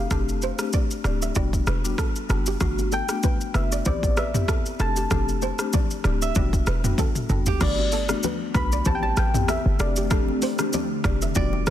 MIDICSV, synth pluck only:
0, 0, Header, 1, 2, 480
1, 0, Start_track
1, 0, Tempo, 625000
1, 84, Time_signature, 4, 2, 24, 8
1, 8986, End_track
2, 0, Start_track
2, 0, Title_t, "Synth pluck"
2, 0, Program_c, 0, 84
2, 0, Note_on_c, 0, 77, 84
2, 538, Note_off_c, 0, 77, 0
2, 2254, Note_on_c, 0, 79, 97
2, 2699, Note_off_c, 0, 79, 0
2, 2733, Note_on_c, 0, 76, 86
2, 2839, Note_off_c, 0, 76, 0
2, 2974, Note_on_c, 0, 74, 94
2, 3213, Note_on_c, 0, 76, 97
2, 3216, Note_off_c, 0, 74, 0
2, 3695, Note_on_c, 0, 81, 105
2, 3703, Note_off_c, 0, 76, 0
2, 4379, Note_off_c, 0, 81, 0
2, 5857, Note_on_c, 0, 74, 105
2, 6575, Note_on_c, 0, 83, 101
2, 6592, Note_off_c, 0, 74, 0
2, 6812, Note_on_c, 0, 81, 113
2, 6817, Note_off_c, 0, 83, 0
2, 6864, Note_off_c, 0, 81, 0
2, 6873, Note_on_c, 0, 79, 96
2, 6928, Note_off_c, 0, 79, 0
2, 6932, Note_on_c, 0, 81, 116
2, 7041, Note_off_c, 0, 81, 0
2, 7055, Note_on_c, 0, 79, 96
2, 7294, Note_on_c, 0, 76, 97
2, 7297, Note_off_c, 0, 79, 0
2, 7513, Note_off_c, 0, 76, 0
2, 7531, Note_on_c, 0, 74, 84
2, 8937, Note_off_c, 0, 74, 0
2, 8986, End_track
0, 0, End_of_file